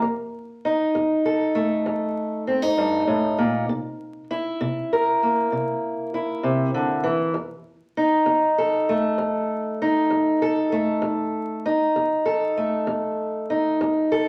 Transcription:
0.02 0.57 F2 medium
0.65 2.47 D#4 medium
0.95 1.49 F2 medium
1.25 3.65 A4 medium
1.55 3.65 A3 medium
1.86 2.40 F2 medium
2.47 2.62 C4 medium
2.62 3.68 D#4 medium
2.78 3.07 G2 medium
3.07 3.38 A2 medium
3.38 3.68 A#2 medium
3.69 4.24 C3 medium
4.31 6.13 E4 medium
4.61 5.15 C3 medium
4.93 7.32 A#4 medium
5.23 7.32 A#3 soft
5.52 6.07 C3 medium
6.14 7.32 E4 medium
6.43 6.74 C3 medium
6.74 7.05 D3 medium
7.04 7.35 E3 medium
7.34 7.90 F2 medium
7.97 9.81 D#4 medium
8.26 8.81 F2 medium
8.58 10.41 A4 medium
8.89 10.72 A3 medium
9.18 9.73 F2 medium
9.82 11.05 D#4 medium
10.10 10.66 F2 medium
10.42 11.69 A4 medium
10.72 11.69 A3 medium
11.02 11.57 F2 medium
11.66 13.50 D#4 medium
11.96 12.50 F2 medium
12.25 14.11 A4 medium
12.57 14.28 A3 soft
12.87 13.42 F2 medium
13.50 14.28 D#4 medium
13.81 14.28 F2 medium
14.12 14.28 A4 medium

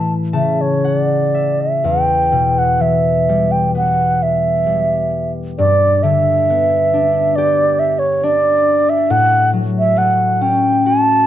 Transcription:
0.00 0.38 A2 soft
0.00 0.38 E3 soft
0.00 2.26 A3 soft
0.00 2.46 E4 soft
0.00 0.14 A5 medium
0.33 1.87 C#3 soft
0.33 0.63 E5 medium
0.33 1.78 A5 medium
0.61 0.86 C#5 medium
0.84 0.97 C#5 soft
0.84 2.45 F#5 soft
0.97 1.63 D5 soft
1.34 3.07 E5 soft
1.61 1.87 E5 medium
1.84 5.62 E2 soft
1.84 2.60 G5 medium
2.32 5.62 B2 soft
2.58 2.83 F#5 medium
2.79 5.62 E3 soft
2.79 3.53 E5 medium
3.29 4.65 G3 soft
3.52 3.74 G5 medium
3.75 6.49 B3 soft
3.75 4.24 F#5 medium
4.23 5.33 E5 medium
4.66 5.62 G3 soft
5.58 9.14 G2 soft
5.58 6.04 D5 medium
6.03 9.14 D3 soft
6.03 7.37 E5 medium
6.50 9.60 B3 soft
6.93 8.23 D4 soft
7.36 9.59 G4 medium
7.36 7.81 D5 medium
7.79 8.00 E5 medium
7.99 8.25 C#5 medium
8.23 10.47 D4 medium
8.23 8.91 D5 medium
8.89 9.12 E5 medium
9.10 11.27 A2 medium
9.10 9.51 F#5 medium
9.53 11.27 F#3 soft
9.79 9.99 E5 medium
9.96 11.27 A3 soft
9.96 10.44 F#5 medium
10.41 11.27 C#4 soft
10.41 10.87 G5 medium
10.86 11.27 F#4 medium
10.86 11.27 A5 medium

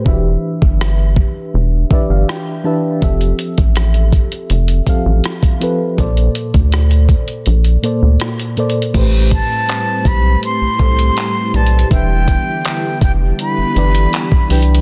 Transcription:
0.05 0.36 E1 loud
0.05 1.09 E3 medium
0.05 1.09 D4 medium
0.05 0.13 F#4 medium
0.05 1.10 B4 medium
0.05 1.10 E5 medium
0.05 kick loud
0.13 1.13 G4 medium
0.62 1.23 G1 medium
0.62 kick medium
0.81 cross-stick loud
1.16 kick loud
1.54 1.85 E1 loud
1.90 2.42 E3 medium
1.90 2.43 D4 medium
1.90 2.43 G4 medium
1.90 2.44 B4 medium
1.90 2.44 D5 medium
1.90 2.09 E5 medium
1.90 kick medium
2.09 2.25 G1 medium
2.09 2.27 F5 medium
2.29 2.63 G5 medium
2.29 cross-stick loud
2.64 2.90 E3 medium
2.64 2.91 D4 medium
2.64 2.91 G4 medium
2.64 2.91 B4 medium
2.64 2.92 E5 medium
2.64 3.00 A5 medium
3.01 3.33 F1 loud
3.01 4.05 F3 medium
3.01 4.05 C4 medium
3.01 4.06 G4 medium
3.01 4.06 A4 medium
3.01 4.06 E5 medium
3.01 kick loud
3.01 closed hi-hat medium
3.21 closed hi-hat soft
3.39 closed hi-hat medium
3.58 4.19 A1 medium
3.58 kick medium
3.58 closed hi-hat soft
3.76 cross-stick loud
3.76 closed hi-hat medium
3.94 closed hi-hat soft
4.13 kick loud
4.13 closed hi-hat medium
4.32 closed hi-hat soft
4.50 4.81 F1 loud
4.50 closed hi-hat medium
4.68 closed hi-hat soft
4.86 5.38 F3 medium
4.86 5.39 C4 medium
4.86 5.39 G4 medium
4.86 5.40 A4 medium
4.86 5.40 F5 medium
4.86 kick medium
4.86 closed hi-hat medium
5.05 5.21 A1 medium
5.24 cross-stick loud
5.24 closed hi-hat medium
5.43 kick medium
5.43 closed hi-hat soft
5.60 5.87 F3 medium
5.60 5.87 C4 medium
5.60 5.87 G4 medium
5.60 5.88 A4 medium
5.60 5.88 B4 medium
5.60 closed hi-hat medium
5.97 6.29 A#1 loud
5.97 7.01 A#2 medium
5.97 7.02 A#3 medium
5.97 7.02 A4 medium
5.97 7.03 C5 medium
5.97 7.03 D5 medium
5.97 kick loud
5.97 closed hi-hat medium
6.17 closed hi-hat soft
6.35 closed hi-hat medium
6.54 7.16 D2 loud
6.54 kick medium
6.54 closed hi-hat soft
6.72 cross-stick loud
6.72 closed hi-hat medium
6.91 closed hi-hat soft
7.09 kick medium
7.09 closed hi-hat soft
7.28 closed hi-hat soft
7.46 7.77 A#1 medium
7.46 closed hi-hat medium
7.64 closed hi-hat soft
7.82 8.35 A#2 medium
7.82 8.35 A#3 medium
7.82 8.36 A4 medium
7.82 8.36 C5 medium
7.82 8.36 D5 medium
7.82 closed hi-hat medium
8.02 8.17 D2 medium
8.20 cross-stick loud
8.20 closed hi-hat medium
8.39 closed hi-hat soft
8.57 8.83 A#2 medium
8.57 8.83 A#3 medium
8.57 8.84 A4 medium
8.57 8.84 C5 medium
8.57 8.85 D5 medium
8.57 closed hi-hat soft
8.70 closed hi-hat soft
8.82 closed hi-hat medium
8.94 9.41 A1 loud
8.94 9.98 A2 medium
8.94 14.81 G3 medium
8.94 11.88 A3 medium
8.94 9.98 A3 medium
8.94 11.88 C4 medium
8.94 14.81 E4 medium
8.94 14.81 G4 medium
8.94 9.98 G4 medium
8.94 9.99 B4 medium
8.94 9.99 C5 medium
8.94 kick loud
8.94 closed hi-hat medium
8.94 crash medium
9.31 10.09 A5 medium
9.31 kick medium
9.31 closed hi-hat medium
9.69 clap loud
9.69 closed hi-hat medium
10.05 10.36 B1 medium
10.05 10.44 B5 loud
10.05 kick loud
10.05 closed hi-hat medium
10.43 11.57 C6 loud
10.43 closed hi-hat medium
10.61 10.69 C2 soft
10.79 11.10 C2 loud
10.79 11.31 A2 medium
10.79 11.31 A3 medium
10.79 11.32 G4 medium
10.79 11.32 A4 medium
10.79 11.33 C5 medium
10.79 kick loud
10.79 closed hi-hat soft
10.99 closed hi-hat medium
11.17 clap loud
11.17 closed hi-hat medium
11.53 11.85 B1 loud
11.53 11.79 A2 medium
11.53 11.80 A3 medium
11.53 11.80 G4 medium
11.53 11.80 B4 medium
11.53 11.81 D5 medium
11.53 11.92 A5 medium
11.53 closed hi-hat soft
11.66 closed hi-hat soft
11.79 closed hi-hat medium
11.90 12.37 E1 medium
11.90 14.81 D3 medium
11.90 12.94 E3 medium
11.90 14.81 B3 medium
11.90 12.94 D4 medium
11.90 12.95 G4 medium
11.90 12.95 B4 medium
11.90 12.95 E5 medium
11.90 12.99 G5 medium
11.90 kick loud
11.90 closed hi-hat medium
12.28 kick medium
12.28 closed hi-hat medium
12.65 clap loud
12.65 closed hi-hat medium
13.01 13.32 F1 medium
13.01 13.12 G5 medium
13.01 kick medium
13.01 closed hi-hat medium
13.39 14.47 B5 medium
13.39 closed hi-hat medium
13.58 13.65 G1 soft
13.75 14.07 G1 loud
13.75 14.27 E3 medium
13.75 14.28 D4 medium
13.75 14.28 G4 medium
13.75 14.29 B4 medium
13.75 14.29 D5 medium
13.75 closed hi-hat soft
13.95 closed hi-hat medium
14.13 clap loud
14.13 closed hi-hat medium
14.32 kick medium
14.49 14.81 C2 loud
14.49 14.76 E3 medium
14.49 14.76 D4 medium
14.49 14.76 G4 medium
14.49 14.77 B4 medium
14.49 14.77 G5 medium
14.49 closed hi-hat soft
14.49 open hi-hat medium
14.62 closed hi-hat soft
14.75 closed hi-hat medium

